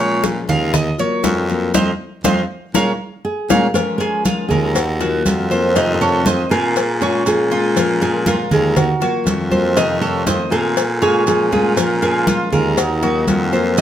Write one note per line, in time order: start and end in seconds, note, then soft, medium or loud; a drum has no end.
0.00 0.42 A#2 loud
0.00 0.22 F3 medium
0.00 0.23 G#3 medium
0.00 0.23 C#4 medium
0.00 0.24 F4 medium
0.00 0.23 C#5 medium
0.23 0.73 F3 soft
0.23 0.73 G#3 soft
0.23 0.74 C#4 medium
0.23 0.74 F4 medium
0.23 high bongo medium
0.23 high conga medium
0.23 maracas medium
0.49 0.94 D#2 loud
0.49 0.73 F5 loud
0.49 high bongo soft
0.49 high conga soft
0.49 low conga medium
0.49 maracas soft
0.74 0.98 D#5 medium
0.74 muted steel-string acoustic guitar stroke medium
0.74 high bongo medium
0.74 high conga soft
0.74 low conga medium
0.74 maracas medium
0.98 1.23 F#3 medium
0.98 1.24 A#3 medium
0.98 1.23 F4 medium
0.98 1.71 C#5 loud
0.98 high conga soft
0.98 maracas soft
1.24 1.71 F2 loud
1.24 1.48 D#3 medium
1.24 1.49 F#3 medium
1.24 1.49 A#3 medium
1.24 1.47 F4 medium
1.24 high bongo soft
1.24 low bongo medium
1.24 high conga medium
1.24 maracas medium
1.49 1.73 F#3 medium
1.49 1.74 A#3 medium
1.49 1.73 F4 medium
1.49 high bongo soft
1.49 maracas soft
1.74 1.93 F2 loud
1.74 1.90 F3 medium
1.74 1.90 A3 medium
1.74 1.90 C4 medium
1.74 1.91 C5 loud
1.74 1.91 D#5 medium
1.74 1.91 F5 medium
1.74 low bongo loud
1.74 high conga loud
1.74 maracas loud
2.24 2.43 F2 loud
2.24 2.41 F3 medium
2.24 2.41 A3 medium
2.24 2.41 C4 medium
2.24 2.41 C5 loud
2.24 2.41 D#5 medium
2.24 2.41 F5 medium
2.24 low bongo loud
2.24 high conga loud
2.24 maracas loud
2.74 2.93 A#2 medium
2.74 2.91 G#3 loud
2.74 2.91 A#3 medium
2.74 2.91 C#4 medium
2.74 2.91 A#4 loud
2.74 2.91 C#5 medium
2.74 2.91 F5 medium
2.74 low bongo loud
2.74 high conga medium
2.74 maracas loud
3.25 3.74 G#4 medium
3.49 3.68 A#2 medium
3.49 3.66 G#3 medium
3.49 3.66 A#3 medium
3.49 3.66 C#4 loud
3.49 3.66 A#4 medium
3.49 3.66 C#5 medium
3.49 3.66 F5 medium
3.49 low bongo loud
3.49 high conga medium
3.49 maracas loud
3.74 4.23 F3 medium
3.74 4.24 G#3 medium
3.74 4.25 C#4 medium
3.74 4.25 F4 medium
3.74 3.97 A#4 loud
3.74 cowbell loud
3.74 high conga soft
3.74 maracas medium
3.98 4.25 G#4 medium
3.98 4.48 A#4 loud
3.98 cowbell medium
3.98 high conga soft
3.98 maracas soft
4.24 4.74 F3 medium
4.24 4.74 G#3 soft
4.24 4.75 C#4 medium
4.24 4.50 F4 medium
4.24 4.75 F4 medium
4.24 cowbell medium
4.24 high conga medium
4.24 maracas medium
4.49 5.21 D#2 loud
4.49 4.73 G#4 medium
4.49 4.99 A#4 medium
4.49 high conga soft
4.49 low conga medium
4.49 maracas soft
4.75 5.46 F#4 medium
4.75 muted steel-string acoustic guitar stroke medium
4.75 cowbell loud
4.75 high conga soft
4.75 maracas medium
5.00 5.25 F#3 medium
5.00 5.25 A#3 medium
5.00 5.24 F4 medium
5.00 5.49 F#4 medium
5.00 cowbell medium
5.00 high conga soft
5.00 maracas soft
5.25 6.44 F2 loud
5.25 5.49 D#3 medium
5.25 5.50 F#3 soft
5.25 5.50 A#3 medium
5.25 5.49 F4 medium
5.25 cowbell medium
5.25 high conga medium
5.25 maracas medium
5.50 5.75 F#3 medium
5.50 5.75 A#3 medium
5.50 5.74 F4 medium
5.50 5.75 C5 medium
5.50 maracas soft
5.75 6.24 C3 medium
5.75 6.24 D#3 medium
5.75 6.25 A3 medium
5.75 6.25 C4 medium
5.75 6.00 D#4 medium
5.75 6.25 F4 medium
5.75 5.93 D#5 loud
5.75 cowbell loud
5.75 high conga soft
5.75 maracas medium
5.94 6.01 D#5 medium
6.01 6.25 A4 medium
6.01 6.26 C#5 medium
6.01 high conga soft
6.01 maracas soft
6.25 6.75 D#3 soft
6.25 6.75 A3 medium
6.25 6.75 C4 medium
6.25 6.75 F4 medium
6.25 6.50 C5 medium
6.25 6.51 D#5 medium
6.25 cowbell medium
6.25 high conga loud
6.25 maracas medium
6.50 7.22 A#2 loud
6.50 7.00 G#4 medium
6.50 7.01 A#4 loud
6.50 cowbell medium
6.50 high conga soft
6.50 maracas soft
6.76 muted steel-string acoustic guitar stroke medium
6.76 cowbell loud
6.76 high conga soft
6.76 maracas medium
7.01 7.25 G#3 medium
7.01 7.50 C#4 medium
7.01 7.26 C#4 medium
7.01 7.25 F4 medium
7.01 7.27 C#5 medium
7.01 high conga soft
7.01 maracas soft
7.25 8.45 A#2 loud
7.25 7.50 F3 medium
7.25 7.50 G#3 medium
7.25 7.51 C#4 medium
7.25 7.49 F4 medium
7.25 7.78 G#4 medium
7.25 cowbell medium
7.25 high conga soft
7.25 maracas medium
7.51 7.75 G#3 medium
7.51 7.76 C#4 medium
7.51 7.75 F4 medium
7.51 8.00 F4 medium
7.51 maracas soft
7.76 8.24 F3 medium
7.76 8.26 G#3 medium
7.76 8.26 C#4 medium
7.76 8.26 F4 medium
7.76 8.01 A#4 medium
7.76 cowbell loud
7.76 high conga soft
7.76 maracas medium
8.01 8.26 G#4 medium
8.01 8.26 A#4 medium
8.01 cowbell medium
8.01 high conga soft
8.01 maracas soft
8.26 8.75 F3 medium
8.26 8.76 G#3 medium
8.26 8.76 C#4 medium
8.26 8.51 F4 medium
8.26 8.76 F4 medium
8.26 8.50 A#4 medium
8.26 cowbell medium
8.26 high conga loud
8.26 maracas medium
8.51 8.96 D#2 loud
8.51 8.77 G#4 medium
8.51 9.00 A#4 medium
8.51 high conga soft
8.51 low conga medium
8.51 maracas soft
8.76 9.48 F#4 medium
8.76 muted steel-string acoustic guitar stroke medium
8.76 cowbell loud
8.76 high conga soft
8.76 low conga medium
8.76 maracas medium
9.00 9.25 F#3 medium
9.00 9.26 A#3 medium
9.00 9.25 F4 medium
9.00 9.50 F#4 medium
9.00 cowbell medium
9.00 high conga soft
9.00 maracas soft
9.26 10.45 F2 loud
9.26 9.50 D#3 soft
9.26 9.51 F#3 medium
9.26 9.51 A#3 medium
9.26 9.49 F4 medium
9.26 cowbell medium
9.26 high conga medium
9.26 maracas medium
9.51 9.76 F#3 medium
9.51 9.76 A#3 medium
9.51 9.75 F4 medium
9.51 9.76 C5 medium
9.51 high conga medium
9.51 maracas soft
9.76 10.26 C3 medium
9.76 10.25 D#3 medium
9.76 10.26 A3 medium
9.76 10.26 C4 medium
9.76 10.01 D#4 medium
9.76 10.27 F4 medium
9.76 10.01 D#5 loud
9.76 cowbell loud
9.76 high conga soft
9.76 maracas medium
10.01 10.26 A4 medium
10.01 10.25 C#5 medium
10.01 high conga soft
10.01 maracas soft
10.26 10.76 D#3 medium
10.26 10.76 A3 medium
10.26 10.76 C4 medium
10.26 10.76 F4 medium
10.26 10.51 C5 medium
10.26 10.51 D#5 medium
10.26 cowbell medium
10.26 high conga loud
10.26 maracas medium
10.51 11.23 A#2 loud
10.51 11.01 G#4 medium
10.51 10.87 A#4 loud
10.51 cowbell medium
10.51 high conga soft
10.51 maracas soft
10.76 muted steel-string acoustic guitar stroke medium
10.76 cowbell loud
10.76 high conga soft
10.76 maracas medium
10.87 10.99 A4 loud
11.01 11.26 G#3 medium
11.01 11.51 C#4 medium
11.01 11.26 C#4 medium
11.01 11.26 F4 medium
11.01 11.26 G#4 medium
11.01 high conga soft
11.01 maracas soft
11.26 12.46 A#2 loud
11.26 11.51 F3 medium
11.26 11.51 G#3 medium
11.26 11.51 C#4 medium
11.26 11.51 F4 medium
11.26 11.50 F4 medium
11.26 11.51 G#4 medium
11.26 cowbell medium
11.26 high conga soft
11.26 maracas medium
11.51 11.76 G#3 medium
11.51 11.76 C#4 medium
11.51 11.76 F4 medium
11.51 12.01 F4 medium
11.51 11.76 F4 medium
11.51 11.76 G#4 medium
11.51 high conga medium
11.51 maracas soft
11.76 12.26 F3 medium
11.76 12.26 G#3 medium
11.76 12.27 C#4 medium
11.76 12.01 F4 medium
11.76 12.27 F4 medium
11.76 12.01 A#4 medium
11.76 cowbell loud
11.76 high conga soft
11.76 maracas medium
12.02 12.49 F4 medium
12.02 12.27 G#4 medium
12.02 12.49 A#4 medium
12.02 cowbell medium
12.02 high conga soft
12.02 maracas soft
12.27 12.76 F3 medium
12.27 12.77 G#3 medium
12.27 12.77 C#4 medium
12.27 12.52 F4 medium
12.27 12.77 F4 medium
12.27 cowbell medium
12.27 high conga loud
12.27 maracas medium
12.52 13.24 D#2 loud
12.52 12.76 F4 medium
12.52 12.78 G#4 medium
12.52 13.01 A#4 medium
12.52 high conga soft
12.52 low conga medium
12.52 maracas soft
12.77 13.49 D#4 medium
12.77 13.49 F#4 medium
12.77 muted steel-string acoustic guitar stroke medium
12.77 cowbell loud
12.77 high conga soft
12.77 maracas medium
13.01 13.26 F#3 medium
13.01 13.27 A#3 medium
13.01 13.26 F4 medium
13.01 13.51 F#4 medium
13.01 cowbell medium
13.01 high conga soft
13.01 maracas soft
13.27 13.81 F2 loud
13.27 13.51 D#3 medium
13.27 13.52 F#3 medium
13.27 13.52 A#3 medium
13.27 13.51 F4 medium
13.27 cowbell medium
13.27 high conga medium
13.27 maracas medium
13.52 13.77 F#3 medium
13.52 13.77 A#3 medium
13.52 13.76 F4 medium
13.52 13.77 C5 medium
13.52 maracas soft
13.77 13.81 C3 medium
13.77 13.81 D#3 medium
13.77 13.81 D#4 medium
13.77 13.81 C5 loud
13.77 13.81 D#5 loud
13.77 high conga soft
13.77 maracas medium